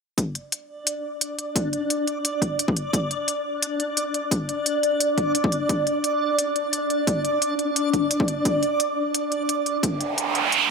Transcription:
0.18 10.70 D4 medium
0.18 10.70 D5 medium
0.18 kick loud
0.18 closed hi-hat medium
0.35 closed hi-hat soft
0.52 closed hi-hat medium
0.87 closed hi-hat medium
1.21 closed hi-hat medium
1.39 closed hi-hat soft
1.56 kick loud
1.56 closed hi-hat medium
1.73 closed hi-hat soft
1.90 closed hi-hat medium
2.07 closed hi-hat soft
2.25 closed hi-hat medium
2.42 kick medium
2.42 closed hi-hat soft
2.59 closed hi-hat medium
2.68 kick loud
2.77 closed hi-hat soft
2.93 kick loud
2.93 closed hi-hat medium
3.11 closed hi-hat soft
3.28 closed hi-hat medium
3.62 closed hi-hat medium
3.80 closed hi-hat soft
3.97 closed hi-hat medium
4.14 closed hi-hat soft
4.31 kick loud
4.31 closed hi-hat medium
4.49 closed hi-hat soft
4.66 closed hi-hat medium
4.83 closed hi-hat soft
5.00 closed hi-hat medium
5.18 kick medium
5.18 closed hi-hat soft
5.35 closed hi-hat medium
5.44 kick loud
5.52 closed hi-hat soft
5.69 kick loud
5.69 closed hi-hat medium
5.87 closed hi-hat soft
6.04 closed hi-hat medium
6.39 closed hi-hat medium
6.56 closed hi-hat soft
6.73 closed hi-hat medium
6.90 closed hi-hat soft
7.07 kick loud
7.07 closed hi-hat medium
7.25 closed hi-hat soft
7.42 closed hi-hat medium
7.59 closed hi-hat soft
7.76 closed hi-hat medium
7.93 kick medium
7.93 closed hi-hat soft
8.11 closed hi-hat medium
8.20 kick loud
8.28 closed hi-hat soft
8.45 kick loud
8.45 closed hi-hat medium
8.63 closed hi-hat soft
8.80 closed hi-hat medium
9.14 closed hi-hat medium
9.32 closed hi-hat soft
9.49 closed hi-hat medium
9.66 closed hi-hat soft
9.83 kick loud
9.83 closed hi-hat medium
9.83 noise sweep medium
10.01 closed hi-hat soft
10.18 closed hi-hat medium
10.35 closed hi-hat soft
10.52 closed hi-hat medium

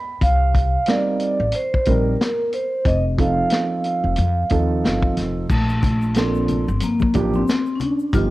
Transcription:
0.00 0.20 B5 medium
0.21 0.75 C2 loud
0.21 0.90 F5 loud
0.21 kick loud
0.21 closed hi-hat medium
0.55 kick medium
0.55 closed hi-hat medium
0.86 1.36 G3 medium
0.86 1.36 C4 medium
0.86 1.36 D#4 medium
0.86 1.36 A#4 medium
0.86 1.56 D5 medium
0.86 snare loud
0.86 closed hi-hat medium
1.20 closed hi-hat medium
1.40 1.51 A1 medium
1.52 1.89 C5 medium
1.52 closed hi-hat medium
1.74 kick medium
1.85 2.14 A#1 medium
1.85 2.11 G3 medium
1.85 2.11 C4 medium
1.85 2.12 D#4 medium
1.85 2.12 A#4 medium
1.85 2.49 A#4 medium
1.85 kick medium
1.85 closed hi-hat medium
2.21 snare loud
2.21 closed hi-hat medium
2.52 2.87 C5 medium
2.52 closed hi-hat medium
2.85 3.39 F1 loud
2.85 3.01 D#5 medium
2.85 kick loud
2.85 closed hi-hat medium
3.18 4.12 F3 medium
3.18 4.12 C4 medium
3.18 4.12 D#4 medium
3.18 4.12 A4 medium
3.18 5.13 F5 medium
3.18 kick medium
3.18 closed hi-hat medium
3.50 snare loud
3.50 closed hi-hat medium
3.84 closed hi-hat medium
4.04 4.15 F1 medium
4.16 4.45 F2 loud
4.16 closed hi-hat medium
4.49 4.86 D#2 medium
4.49 5.44 F3 medium
4.49 5.44 C4 medium
4.49 5.44 D#4 medium
4.49 5.44 A4 medium
4.49 kick medium
4.49 closed hi-hat medium
4.84 5.11 G1 medium
4.84 snare loud
4.84 closed hi-hat medium
5.02 kick medium
5.17 5.44 F1 medium
5.17 snare soft
5.17 closed hi-hat medium
5.50 6.63 A#1 medium
5.50 6.18 A3 medium
5.50 kick loud
5.50 crash medium
5.50 shaker medium
5.69 shaker soft
5.83 kick medium
5.83 closed hi-hat medium
5.83 low conga medium
5.83 shaker soft
6.01 shaker soft
6.14 6.63 F3 medium
6.14 6.64 A#3 medium
6.14 6.84 C4 medium
6.14 6.64 D4 medium
6.14 6.64 A4 medium
6.14 snare loud
6.14 closed hi-hat medium
6.14 shaker medium
6.34 shaker soft
6.48 closed hi-hat medium
6.48 low conga medium
6.48 shaker soft
6.68 6.79 G1 medium
6.68 shaker soft
6.80 7.36 A#3 medium
6.80 closed hi-hat medium
6.80 high conga soft
6.80 shaker medium
7.00 kick medium
7.00 high conga medium
7.00 shaker soft
7.14 7.42 A1 medium
7.14 7.39 F3 medium
7.14 7.39 A#3 medium
7.14 7.39 D4 medium
7.14 7.39 G4 medium
7.14 kick medium
7.14 closed hi-hat medium
7.14 shaker soft
7.34 7.77 C4 medium
7.34 high conga medium
7.34 shaker soft
7.48 snare loud
7.48 closed hi-hat medium
7.48 shaker medium
7.66 shaker soft
7.76 7.81 C#4 medium
7.80 8.15 D4 medium
7.80 closed hi-hat medium
7.80 low conga medium
7.80 shaker soft
8.00 shaker soft
8.13 8.30 G1 loud
8.13 8.30 F3 medium
8.13 8.30 B3 medium
8.13 8.30 D#4 medium
8.13 8.30 F4 loud
8.13 8.30 G4 medium
8.13 kick loud
8.13 closed hi-hat medium
8.13 shaker medium

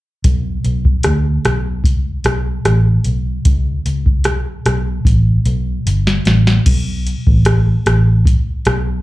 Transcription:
0.24 0.57 B1 loud
0.24 kick medium
0.24 closed hi-hat medium
0.64 0.97 B1 medium
0.64 closed hi-hat soft
0.85 kick medium
1.03 1.37 D2 medium
1.03 cross-stick medium
1.03 closed hi-hat medium
1.45 1.84 B1 medium
1.45 cross-stick medium
1.45 closed hi-hat soft
1.84 2.17 C#2 medium
1.84 kick medium
1.84 closed hi-hat medium
2.24 2.57 B1 medium
2.24 cross-stick medium
2.24 closed hi-hat soft
2.65 2.97 A1 medium
2.65 cross-stick medium
2.65 closed hi-hat medium
3.04 3.37 B1 medium
3.04 closed hi-hat soft
3.45 3.78 C#2 medium
3.45 kick medium
3.45 closed hi-hat medium
3.86 4.26 C#2 medium
3.86 closed hi-hat soft
4.06 kick medium
4.24 4.58 B1 medium
4.24 cross-stick medium
4.24 closed hi-hat medium
4.66 4.98 B1 medium
4.66 cross-stick medium
4.66 closed hi-hat soft
5.05 5.37 A1 medium
5.05 kick medium
5.05 closed hi-hat medium
5.46 5.78 B1 medium
5.46 closed hi-hat soft
5.86 6.18 G1 medium
5.86 closed hi-hat medium
6.07 snare medium
6.25 6.58 A1 medium
6.25 snare medium
6.25 closed hi-hat soft
6.47 snare medium
6.66 7.14 B1 loud
6.66 kick loud
6.66 closed hi-hat medium
6.66 crash medium
7.07 closed hi-hat soft
7.27 7.75 A1 medium
7.27 kick medium
7.45 cross-stick medium
7.45 closed hi-hat medium
7.86 8.34 A1 medium
7.86 cross-stick medium
7.86 closed hi-hat medium
8.26 kick loud
8.26 closed hi-hat medium
8.65 8.98 B1 loud
8.65 cross-stick medium
8.65 closed hi-hat soft

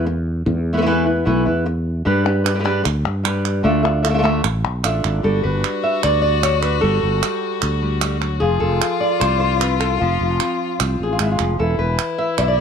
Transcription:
0.00 0.43 E2 medium
0.06 muted nylon-string guitar stroke medium
0.46 1.22 E2 loud
0.46 muted nylon-string guitar stroke medium
0.73 0.76 A3 medium
0.73 0.77 B3 medium
0.73 0.77 E4 medium
0.73 0.77 B4 medium
0.77 0.81 A3 medium
0.77 0.81 B3 medium
0.77 0.81 E4 medium
0.77 0.82 B4 medium
0.82 0.85 A3 medium
0.82 0.86 B3 medium
0.82 0.86 E4 medium
0.82 0.86 B4 medium
0.86 1.05 E3 medium
0.86 1.06 A3 medium
0.86 1.06 B3 medium
0.86 1.05 E4 medium
0.86 1.05 B4 medium
1.06 1.25 B3 soft
1.06 1.25 E4 soft
1.06 1.25 B4 medium
1.25 1.45 B1 loud
1.25 1.45 E3 medium
1.25 1.45 A3 medium
1.25 1.45 B3 medium
1.25 1.45 E4 medium
1.25 1.44 B4 medium
1.46 2.02 E2 medium
1.46 1.65 B3 soft
1.46 1.65 E4 medium
1.46 1.65 B4 medium
1.66 muted nylon-string guitar stroke medium
2.05 2.82 G2 loud
2.05 2.25 G3 medium
2.05 2.25 D4 medium
2.05 2.24 G4 medium
2.05 2.24 B4 medium
2.25 2.44 D4 soft
2.25 2.44 G4 medium
2.25 2.43 B4 medium
2.44 2.54 D4 medium
2.44 2.54 G4 medium
2.44 2.54 B4 medium
2.44 clap medium
2.55 2.58 G3 soft
2.55 2.58 D4 soft
2.55 2.59 G4 medium
2.55 2.59 B4 medium
2.59 2.63 G3 medium
2.59 2.63 D4 medium
2.59 2.64 G4 medium
2.59 2.64 B4 medium
2.64 2.82 G3 medium
2.64 2.83 D4 medium
2.64 2.83 G4 medium
2.64 2.83 B4 medium
2.84 3.04 D2 loud
2.84 muted nylon-string guitar stroke medium
2.84 clap medium
3.05 3.61 G2 medium
3.05 clap medium
3.23 3.63 G3 medium
3.23 3.63 D4 medium
3.23 3.64 G4 medium
3.23 3.64 B4 medium
3.23 clap medium
3.45 clap medium
3.63 4.40 D2 loud
3.63 3.83 D3 medium
3.63 3.83 A3 medium
3.63 3.83 D4 medium
3.63 3.83 F4 medium
3.63 3.82 A4 medium
3.63 3.82 E5 medium
3.83 4.03 D4 soft
3.83 4.03 F4 medium
3.83 4.02 A4 medium
3.83 4.01 E5 medium
4.03 4.08 D4 soft
4.03 4.09 F4 medium
4.03 4.09 A4 medium
4.03 4.09 E5 medium
4.03 clap medium
4.09 4.13 A3 soft
4.09 4.12 D4 medium
4.09 4.13 F4 soft
4.09 4.14 A4 medium
4.09 4.14 E5 medium
4.14 4.17 A3 medium
4.14 4.17 D4 medium
4.14 4.17 F4 medium
4.14 4.18 A4 medium
4.14 4.18 E5 medium
4.18 4.22 A3 medium
4.18 4.22 D4 medium
4.18 4.22 F4 medium
4.18 4.22 A4 medium
4.18 4.22 E5 medium
4.22 4.42 D3 medium
4.22 4.42 A3 medium
4.22 4.43 D4 medium
4.22 4.43 F4 medium
4.22 4.43 A4 medium
4.22 4.43 E5 medium
4.43 4.62 A1 loud
4.43 muted nylon-string guitar stroke medium
4.43 clap medium
4.64 4.82 B1 medium
4.64 clap medium
4.83 5.02 A1 medium
4.83 5.23 D4 medium
4.83 5.23 F4 medium
4.83 5.23 A4 medium
4.83 5.24 E5 medium
4.83 clap medium
5.04 5.22 G#1 medium
5.04 clap medium
5.23 5.42 G1 medium
5.23 6.80 G3 medium
5.23 6.41 D4 soft
5.23 8.44 F#4 medium
5.23 5.43 A4 loud
5.43 5.62 G1 medium
5.43 6.23 B4 medium
5.64 clap medium
5.84 6.03 E5 medium
6.03 6.79 D2 medium
6.03 6.21 D5 loud
6.03 clap medium
6.22 6.82 D5 loud
6.42 6.80 D4 medium
6.42 6.62 C#5 medium
6.42 clap medium
6.62 6.81 B4 medium
6.62 clap medium
6.81 7.01 G1 medium
6.81 7.02 G3 medium
6.81 8.41 A4 loud
7.03 7.21 G1 medium
7.03 7.22 G3 soft
7.23 7.81 G3 soft
7.23 clap medium
7.62 8.38 D2 medium
7.62 clap medium
7.82 8.00 G3 soft
8.01 8.20 G3 medium
8.01 clap medium
8.21 8.41 F#3 medium
8.21 clap medium
8.40 8.60 F1 medium
8.40 9.98 F3 medium
8.40 11.39 F4 loud
8.40 9.00 G#4 loud
8.60 8.80 F1 medium
8.60 9.19 A4 medium
8.82 9.97 F4 soft
8.82 clap medium
9.00 9.60 D5 medium
9.20 9.96 C2 medium
9.20 9.39 C5 loud
9.20 clap medium
9.40 9.59 C5 medium
9.59 9.98 C4 medium
9.59 9.79 B4 medium
9.59 clap medium
9.80 9.98 A4 medium
9.80 clap medium
9.98 10.19 F1 loud
9.98 11.37 F3 medium
9.98 11.11 F4 medium
10.21 10.39 F1 medium
10.40 10.80 C4 soft
10.40 clap medium
10.80 10.98 C2 medium
10.80 11.57 C4 soft
10.80 clap medium
11.00 11.18 A1 medium
11.00 11.52 G#4 medium
11.13 11.21 F4 medium
11.19 11.38 G#1 medium
11.19 11.39 G#3 medium
11.19 11.31 E4 medium
11.19 clap medium
11.31 11.59 F4 medium
11.38 11.58 F1 medium
11.38 11.59 F3 medium
11.38 clap medium
11.59 11.78 E1 medium
11.59 12.60 E3 medium
11.59 12.60 E4 loud
11.59 11.78 A4 medium
11.79 11.97 E1 medium
11.79 12.58 B4 medium
11.99 clap medium
12.18 12.38 E5 medium
12.38 12.60 B1 medium
12.38 12.43 D5 medium
12.38 clap medium
12.43 12.48 E5 medium
12.48 12.58 D5 medium

